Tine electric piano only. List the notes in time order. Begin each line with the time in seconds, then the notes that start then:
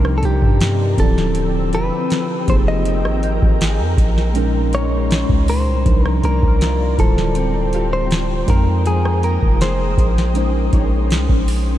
Already playing: F3 D4 D#4 A#4
0.96 E3 C4 E4 G4
1.03 F3
2.47 A#3 D#4 G4 G#4
4.34 G#3 C#4 D#4 A#4
5.85 F3 D4 D#4 A#4
6.97 G3 E4 F4 C5
8.47 G#3 D#4 A#4 G5
10.34 G#3 C#4 D#4 C5